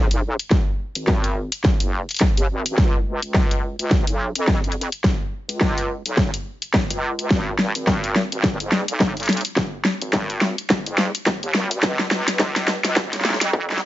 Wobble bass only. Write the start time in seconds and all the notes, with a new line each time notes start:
Already playing: B1
0.96 G#1
1.81 F#1
2.38 D#2
2.49 G#1
3.22 C#2
3.79 C#2
4.07 B1
4.36 F2
5.49 C#2
6.05 B1
6.90 C#2
7.31 G#1
7.76 G#1
8.32 G#1
8.61 F#1
8.89 B1
10.02 G#1
10.87 F#1
11.43 D#2
11.55 G#1
11.84 C#2
12.28 C#2
12.85 C#2
13.13 B1
13.41 F2